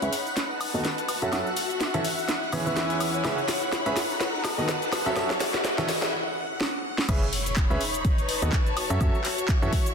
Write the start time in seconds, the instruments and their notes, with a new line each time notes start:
Already playing: string section E4 C#5 B5, string machine F#5 F#6, riser
0.02 fm bass C#2, grand piano C#4 G#4 B4 E5, closed hi-hat, tambourine
0.12 string section D#4, open hi-hat, tambourine, cabasa
0.26 tambourine, cabasa
0.37 snare, closed hi-hat, tambourine, cabasa
0.50 string section B4, tambourine
0.56 string section A5
0.61 open hi-hat, tambourine, cabasa, high woodblock
0.74 fm bass D#2, grand piano D#3 B3 F#4 A4 D#5, tambourine, cabasa
0.85 snare, closed hi-hat, tambourine, cabasa
0.98 closed hi-hat, tambourine, cabasa
1.08 string section F#4, open hi-hat, tambourine, cabasa, high woodblock
1.22 fm bass F#2, grand piano F#3 C#4 F#4 A4 E5, closed hi-hat, tambourine, cabasa
1.32 fm bass F#2, grand piano F#3 C#4 F#4 A4 E5, snare, closed hi-hat, tambourine, cabasa, high woodblock
1.46 tambourine, cabasa
1.52 string section E5
1.57 open hi-hat, tambourine, cabasa
1.70 closed hi-hat, tambourine, cabasa
1.80 snare, closed hi-hat, tambourine, cabasa
1.94 fm bass F#2, grand piano E3 C#4 F#4 A4 E5, closed hi-hat, tambourine
2.04 string section E4, open hi-hat, tambourine, cabasa
2.17 tambourine, cabasa
2.28 snare, closed hi-hat, tambourine, cabasa
2.43 tambourine
2.51 fm bass E2, grand piano E3 C#4 G#4 B4 E5, string section C#5, open hi-hat, tambourine, cabasa, high woodblock
2.59 string section G#5
2.66 fm bass E2, grand piano E3 C#4 G#4 B4 E5, tambourine, cabasa
2.76 snare, closed hi-hat, tambourine, cabasa
2.90 closed hi-hat, tambourine, cabasa
3.00 open hi-hat, tambourine, cabasa, high woodblock
3.14 closed hi-hat, tambourine, cabasa
3.24 fm bass C#2, grand piano C#3 C#4 G#4 B4 E5, snare, closed hi-hat, tambourine, cabasa, high woodblock
3.38 tambourine, cabasa
3.48 snare, open hi-hat, tambourine, cabasa
3.58 string section B5, tambourine
3.62 closed hi-hat, cabasa
3.72 snare, closed hi-hat, tambourine, cabasa
3.85 fm bass C#2, grand piano C#4 G#4 B4 E5, closed hi-hat, tambourine
3.97 string section D#4, snare, open hi-hat, tambourine, cabasa
4.10 tambourine, cabasa
4.21 snare, closed hi-hat, tambourine, cabasa
4.32 string section B4, tambourine
4.41 string section A5, snare, open hi-hat, tambourine, high woodblock
4.45 cabasa
4.58 fm bass D#2, grand piano D#3 B3 F#4 A4 D#5, tambourine, cabasa
4.68 snare, closed hi-hat, tambourine, cabasa
4.82 closed hi-hat, tambourine, cabasa
4.92 string section F#4, snare, open hi-hat, tambourine, cabasa, high woodblock
5.06 fm bass F#2, grand piano F#3 C#4 F#4 A4 E5, closed hi-hat, tambourine, cabasa
5.16 fm bass F#2, grand piano F#3 C#4 F#4 A4 E5, snare, closed hi-hat, tambourine, cabasa, high woodblock
5.30 snare, tambourine, cabasa
5.37 string section E5, snare, open hi-hat, tambourine
5.41 cabasa
5.54 snare, closed hi-hat, tambourine, cabasa
5.65 snare, closed hi-hat, tambourine, cabasa
5.78 fm bass F#2, grand piano E3 C#4 F#4 A4 E5, snare, closed hi-hat
5.89 string section E4, snare, open hi-hat, tambourine, cabasa
6.02 snare, tambourine, cabasa
6.61 snare
6.98 snare
7.09 fm bass C#2, grand piano C#3 C#4 G#4 B4 E5, string machine C#5 C#6, kick, closed hi-hat, crash, impact, cabasa, high woodblock
7.22 cabasa
7.33 open hi-hat
7.42 string section B5
7.46 closed hi-hat, cabasa
7.56 kick, clap, closed hi-hat, cabasa
7.70 fm bass C#2, grand piano C#4 G#4 B4 E5, cabasa
7.81 string section D#4, open hi-hat
7.94 closed hi-hat, cabasa
8.05 kick, closed hi-hat, cabasa
8.18 string section B4, closed hi-hat, cabasa
8.24 string section A5
8.29 open hi-hat
8.42 fm bass D#2, grand piano D#3 B3 F#4 A4 D#5, closed hi-hat, cabasa
8.53 kick, clap, closed hi-hat, cabasa
8.66 closed hi-hat, cabasa
8.77 string section F#4, open hi-hat, high woodblock
8.90 fm bass F#2, grand piano F#3 C#4 F#4 A4 E5, closed hi-hat, cabasa
9.01 fm bass F#2, grand piano F#3 C#4 F#4 A4 E5, string section E5, kick, closed hi-hat, cabasa, high woodblock
9.15 cabasa
9.24 clap, open hi-hat
9.38 closed hi-hat, cabasa
9.48 kick, clap, closed hi-hat, cabasa
9.62 fm bass F#2, grand piano E3 C#4 F#4 A4 E5, cabasa
9.73 string section E4, kick, open hi-hat
9.86 closed hi-hat, cabasa